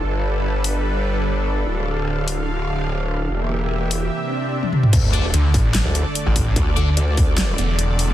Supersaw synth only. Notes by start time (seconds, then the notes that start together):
Already playing: A4
0.03 G3 D4 B4
1.66 D3 F5
3.30 E3 A#3 G4 E5
4.11 C3 C4
4.93 D3 A3 A4 D5